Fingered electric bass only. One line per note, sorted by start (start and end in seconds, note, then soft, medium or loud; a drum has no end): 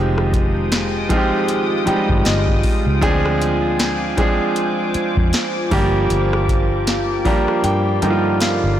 0.00 1.29 F1 loud
1.87 muted fingered electric bass stroke soft
2.10 2.24 G1 medium
2.26 2.61 G1 loud
2.87 3.01 C#2 medium
3.03 4.36 D2 loud
4.95 muted fingered electric bass stroke soft
5.17 5.32 F2 loud
5.72 6.07 G1 loud
6.11 7.44 G1 loud
7.64 7.99 G2 loud
8.03 8.59 G2 loud
8.64 8.78 G1 medium